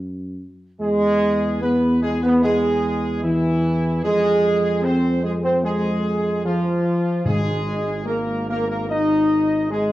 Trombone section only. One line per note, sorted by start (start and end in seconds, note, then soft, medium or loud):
0.82 1.57 G#3 loud
1.62 2.02 B3 loud
2.02 2.11 G#3 loud
2.23 2.41 B3 loud
2.44 3.20 G#3 loud
3.24 4.04 E3 loud
4.04 4.80 G#3 loud
4.84 5.24 C4 loud
5.23 5.33 G#3 medium
5.43 5.62 C4 medium
5.63 6.41 G#3 loud
6.45 7.22 F3 loud
7.26 8.06 G#3 loud
8.06 8.45 A#3 medium
8.49 8.67 A#3 loud
8.68 8.88 A#3 medium
8.90 9.67 D#4 loud
9.70 9.92 G#3 loud